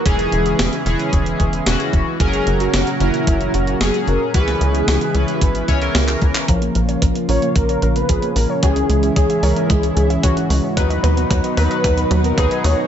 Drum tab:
HH |xxxxxxxxxxxxxxx-|xxxxxxxxxxxxxxx-|xxxxxxxxxxxxxxx-|xxxxxxoxxxxxxxo-|
CP |----------------|----------------|-------------x-x|----------------|
SD |----o-------o---|----o-------o---|-o--o-------o---|----------------|
T2 |----------------|----------------|----------------|o---o---o---o---|
BD |o-------o-o---o-|o-------o-------|o-------o-o---o-|o---o---o---o---|

HH |xxxxxxoxxxxxxxo-|xxxxxxoxxxxxxxo-|
CP |----------------|----------------|
SD |----------------|----------------|
T2 |o---o---o---o---|o-o-o-o-o-o-o-o-|
BD |o---o---o---o---|o---o---o---o---|